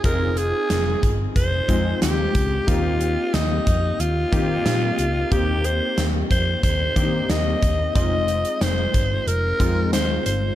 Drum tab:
HH |x-x-x-x-x-x-x-x-|x-x-x-x-x-x-x-x-|x-x-x-x-x-x-x-x-|x-xxx-x-x-x-x-x-|
SD |----o-------o---|----o-------o---|----o-------o---|----o-------o---|
BD |o-----o-o-o---o-|o-----o---o-----|o-----o-o-o---o-|o-----o---o-----|